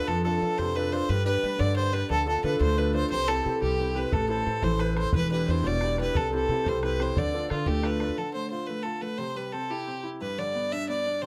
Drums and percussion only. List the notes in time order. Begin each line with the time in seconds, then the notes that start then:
4.12 bodhran
4.20 bodhran
4.62 bodhran
4.79 bodhran
4.97 bodhran
5.04 bodhran
5.13 bodhran
5.21 bodhran
5.64 bodhran
5.81 bodhran
5.98 bodhran
6.06 bodhran
6.15 bodhran
6.24 bodhran
6.66 bodhran
6.83 bodhran
7.00 bodhran
7.08 bodhran
7.17 bodhran
7.25 bodhran
7.50 bodhran
7.66 bodhran
7.83 bodhran
8.00 bodhran
8.09 bodhran